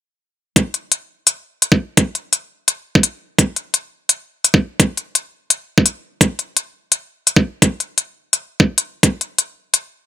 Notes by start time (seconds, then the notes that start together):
0.56 kick, closed hi-hat
0.74 closed hi-hat
0.92 closed hi-hat
1.27 closed hi-hat
1.62 closed hi-hat
1.72 kick
1.97 kick, closed hi-hat
2.15 closed hi-hat
2.33 closed hi-hat
2.68 closed hi-hat
2.95 kick
3.03 closed hi-hat
3.38 kick, closed hi-hat
3.56 closed hi-hat
3.74 closed hi-hat
4.09 closed hi-hat
4.44 closed hi-hat
4.54 kick
4.80 kick, closed hi-hat
4.97 closed hi-hat
5.15 closed hi-hat
5.50 closed hi-hat
5.78 kick
5.86 closed hi-hat
6.21 kick, closed hi-hat
6.39 closed hi-hat
6.57 closed hi-hat
6.92 closed hi-hat
7.27 closed hi-hat
7.36 kick
7.62 kick, closed hi-hat
7.80 closed hi-hat
7.98 closed hi-hat
8.33 closed hi-hat
8.60 kick
8.78 closed hi-hat
9.03 kick, closed hi-hat
9.21 closed hi-hat
9.38 closed hi-hat
9.74 closed hi-hat